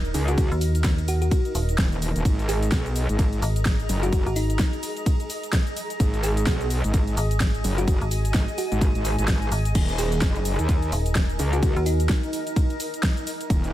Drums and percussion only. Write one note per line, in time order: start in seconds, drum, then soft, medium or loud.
0.05 closed hi-hat soft
0.05 shaker soft
0.14 open hi-hat loud
0.14 shaker medium
0.28 closed hi-hat medium
0.28 shaker soft
0.38 kick loud
0.38 closed hi-hat medium
0.38 ride medium
0.38 shaker soft
0.52 closed hi-hat soft
0.52 shaker soft
0.61 open hi-hat loud
0.61 shaker medium
0.75 closed hi-hat medium
0.75 shaker soft
0.84 kick loud
0.84 snare loud
0.84 closed hi-hat medium
0.84 ride medium
0.84 shaker soft
0.98 closed hi-hat soft
0.98 shaker soft
1.08 open hi-hat loud
1.08 shaker medium
1.22 closed hi-hat medium
1.22 shaker soft
1.31 kick loud
1.31 closed hi-hat medium
1.31 ride medium
1.31 shaker soft
1.45 closed hi-hat soft
1.45 shaker soft
1.55 open hi-hat loud
1.55 shaker medium
1.69 closed hi-hat soft
1.69 shaker soft
1.78 kick loud
1.78 snare loud
1.78 closed hi-hat medium
1.78 ride medium
1.78 shaker soft
1.92 closed hi-hat soft
1.92 shaker soft
2.02 open hi-hat loud
2.02 shaker medium
2.16 closed hi-hat medium
2.16 shaker soft
2.25 kick loud
2.25 closed hi-hat medium
2.25 ride medium
2.25 shaker soft
2.39 closed hi-hat soft
2.39 shaker soft
2.49 open hi-hat loud
2.49 shaker medium
2.63 closed hi-hat medium
2.63 shaker soft
2.72 kick loud
2.72 snare loud
2.72 closed hi-hat medium
2.72 ride medium
2.72 shaker soft
2.86 closed hi-hat soft
2.86 shaker soft
2.96 open hi-hat loud
2.96 shaker medium
3.09 closed hi-hat medium
3.09 shaker soft
3.19 kick loud
3.19 closed hi-hat medium
3.19 ride medium
3.19 shaker soft
3.33 closed hi-hat soft
3.33 shaker soft
3.42 open hi-hat loud
3.42 shaker medium
3.56 closed hi-hat medium
3.56 shaker soft
3.65 kick loud
3.65 snare loud
3.65 closed hi-hat medium
3.65 ride medium
3.65 shaker soft
3.80 closed hi-hat soft
3.80 shaker soft
3.89 open hi-hat loud
3.89 shaker medium
4.03 closed hi-hat medium
4.03 shaker soft
4.13 kick loud
4.13 closed hi-hat medium
4.13 ride medium
4.13 shaker soft
4.26 closed hi-hat soft
4.26 shaker soft
4.36 open hi-hat loud
4.36 shaker medium
4.50 closed hi-hat medium
4.50 shaker soft
4.59 kick loud
4.59 snare loud
4.59 closed hi-hat medium
4.59 ride medium
4.59 shaker medium
4.73 closed hi-hat soft
4.73 shaker soft
4.83 open hi-hat loud
4.83 shaker medium
4.97 closed hi-hat medium
4.97 shaker soft
5.06 kick loud
5.06 closed hi-hat medium
5.06 ride medium
5.06 shaker medium
5.20 closed hi-hat soft
5.20 shaker soft
5.30 open hi-hat loud
5.30 shaker medium
5.43 closed hi-hat medium
5.43 shaker soft
5.53 kick loud
5.53 snare loud
5.53 closed hi-hat medium
5.53 ride medium
5.53 shaker soft
5.67 closed hi-hat soft
5.67 shaker soft
5.77 open hi-hat loud
5.77 shaker medium
5.90 closed hi-hat medium
5.90 shaker soft
6.00 kick loud
6.00 closed hi-hat medium
6.00 ride medium
6.00 shaker soft
6.14 closed hi-hat soft
6.14 shaker soft
6.23 open hi-hat loud
6.23 shaker medium
6.37 closed hi-hat medium
6.37 shaker soft
6.47 kick loud
6.47 snare loud
6.47 closed hi-hat medium
6.47 ride medium
6.47 shaker soft
6.61 closed hi-hat soft
6.61 shaker soft
6.70 open hi-hat loud
6.70 shaker medium
6.84 closed hi-hat medium
6.84 shaker soft
6.94 kick loud
6.94 closed hi-hat medium
6.94 ride medium
6.94 shaker medium
7.07 closed hi-hat soft
7.07 shaker soft
7.17 open hi-hat loud
7.17 shaker medium
7.31 closed hi-hat medium
7.31 shaker soft
7.40 kick loud
7.40 snare loud
7.40 closed hi-hat medium
7.40 ride medium
7.40 shaker medium
7.54 closed hi-hat soft
7.54 shaker soft
7.64 open hi-hat loud
7.64 shaker medium
7.78 closed hi-hat medium
7.78 shaker soft
7.88 kick loud
7.88 closed hi-hat medium
7.88 ride medium
7.88 shaker soft
8.01 closed hi-hat soft
8.01 shaker soft
8.11 open hi-hat loud
8.11 shaker medium
8.25 closed hi-hat medium
8.25 shaker soft
8.34 kick loud
8.34 snare loud
8.34 closed hi-hat medium
8.34 ride medium
8.34 shaker soft
8.48 closed hi-hat soft
8.48 shaker soft
8.58 open hi-hat loud
8.58 shaker medium
8.72 closed hi-hat medium
8.72 shaker soft
8.81 kick loud
8.81 closed hi-hat medium
8.81 ride medium
8.81 shaker soft
8.95 closed hi-hat soft
8.95 shaker soft
9.05 open hi-hat loud
9.05 shaker medium
9.19 closed hi-hat medium
9.19 shaker soft
9.28 kick loud
9.28 snare loud
9.28 closed hi-hat medium
9.28 ride medium
9.28 shaker soft
9.42 closed hi-hat soft
9.42 shaker soft
9.52 open hi-hat loud
9.52 shaker medium
9.65 closed hi-hat medium
9.65 shaker soft
9.75 kick loud
9.75 closed hi-hat medium
9.75 crash medium
9.75 ride medium
9.75 shaker soft
9.89 closed hi-hat soft
9.89 shaker soft
9.98 open hi-hat loud
9.98 shaker medium
10.12 closed hi-hat medium
10.12 shaker soft
10.21 kick loud
10.21 snare loud
10.21 closed hi-hat medium
10.21 ride medium
10.21 shaker soft
10.36 closed hi-hat soft
10.36 shaker soft
10.45 open hi-hat loud
10.45 shaker medium
10.59 closed hi-hat medium
10.59 shaker soft
10.69 kick loud
10.69 closed hi-hat medium
10.69 ride medium
10.69 shaker soft
10.82 closed hi-hat soft
10.82 shaker soft
10.92 open hi-hat loud
10.92 shaker medium
11.06 closed hi-hat medium
11.06 shaker soft
11.15 kick loud
11.15 snare loud
11.15 closed hi-hat medium
11.15 ride medium
11.15 shaker soft
11.29 closed hi-hat soft
11.29 shaker soft
11.39 open hi-hat loud
11.39 shaker medium
11.53 closed hi-hat medium
11.53 shaker soft
11.63 kick loud
11.63 closed hi-hat medium
11.63 ride medium
11.63 shaker soft
11.76 closed hi-hat soft
11.76 shaker soft
11.86 open hi-hat loud
11.86 shaker medium
12.00 closed hi-hat medium
12.00 shaker soft
12.09 kick loud
12.09 snare loud
12.09 closed hi-hat medium
12.09 ride medium
12.09 shaker soft
12.23 closed hi-hat soft
12.23 shaker soft
12.33 open hi-hat loud
12.33 shaker medium
12.47 closed hi-hat medium
12.47 shaker soft
12.56 kick loud
12.56 closed hi-hat medium
12.56 ride medium
12.56 shaker soft
12.70 closed hi-hat soft
12.70 shaker soft
12.80 open hi-hat loud
12.80 shaker medium
12.94 closed hi-hat medium
12.94 shaker soft
13.03 kick loud
13.03 snare loud
13.03 closed hi-hat medium
13.03 ride medium
13.03 shaker soft
13.17 closed hi-hat soft
13.17 shaker soft
13.27 open hi-hat loud
13.27 shaker medium
13.41 closed hi-hat medium
13.41 shaker soft
13.50 kick loud
13.50 closed hi-hat medium
13.50 ride medium
13.50 shaker soft
13.64 closed hi-hat soft
13.64 shaker soft